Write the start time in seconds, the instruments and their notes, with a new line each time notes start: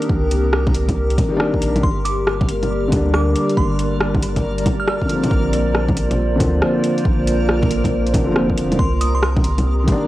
Already playing: felt piano D#3 G3 A#3 D4, synth texture A#3 A#4, ambient pad C4 G4 A#4 D#6
0.02 closed hi-hat
0.09 sub bass C2, kick
0.31 closed hi-hat
0.53 cross-stick
0.67 kick, low bongo
0.74 closed hi-hat
0.89 kick, closed hi-hat, low bongo
1.10 closed hi-hat
1.18 kick, closed hi-hat, low bongo
1.29 felt piano D#3 G3
1.34 felt piano A#3 D4
1.40 cross-stick
1.54 kick
1.62 sub bass A#1, closed hi-hat
1.76 closed hi-hat, low bongo
1.83 sub bass G1, ambient pad G3 D5, synth bell C6, kick
2.05 synth bell D6, closed hi-hat
2.27 cross-stick
2.41 kick, low bongo
2.49 closed hi-hat
2.63 closed hi-hat, low bongo
2.88 sub bass D2, felt piano D3 G3, kick, closed hi-hat, low bongo
2.93 felt piano A#3 D4
3.14 synth bell D6, cross-stick
3.36 closed hi-hat
3.49 closed hi-hat
3.57 sub bass G1, synth bell C6, kick
3.79 closed hi-hat
4.01 cross-stick
4.14 kick, low bongo
4.22 closed hi-hat
4.36 kick, closed hi-hat, low bongo
4.58 closed hi-hat
4.66 kick, closed hi-hat, low bongo
4.80 synth bell F6
4.88 synth bell F6, cross-stick
5.02 felt piano D3, kick
5.08 felt piano F3 A#3, closed hi-hat
5.14 felt piano C4
5.24 closed hi-hat, low bongo
5.31 sub bass A#1, ambient pad A#3 F4 C5, kick
5.53 closed hi-hat
5.75 cross-stick
5.89 kick, low bongo
5.97 closed hi-hat
6.11 closed hi-hat, low bongo
6.36 felt piano D3 F3
6.40 sub bass D2, felt piano A#3 C4, kick, closed hi-hat, low bongo
6.62 cross-stick
6.84 closed hi-hat
6.98 closed hi-hat
7.05 sub bass A#1, kick
7.27 closed hi-hat
7.49 cross-stick
7.63 kick, low bongo
7.71 closed hi-hat
7.84 kick, closed hi-hat, low bongo
8.07 closed hi-hat
8.14 kick, closed hi-hat, low bongo
8.24 sub bass F1, felt piano D3 F3
8.29 felt piano A#3 C4
8.36 cross-stick
8.50 kick
8.57 sub bass F1, closed hi-hat
8.72 closed hi-hat, low bongo
8.78 sub bass C2, synth texture A#3 A#4, ambient pad C4 G4 A#4 D#6, synth bell C6, kick
9.01 synth bell D#6, closed hi-hat
9.15 synth bell C6
9.23 synth bell C6, cross-stick
9.36 kick, low bongo
9.44 closed hi-hat
9.58 closed hi-hat, low bongo
9.84 sub bass G1, felt piano D#3 G3, kick, closed hi-hat, low bongo
9.89 felt piano A#3 D4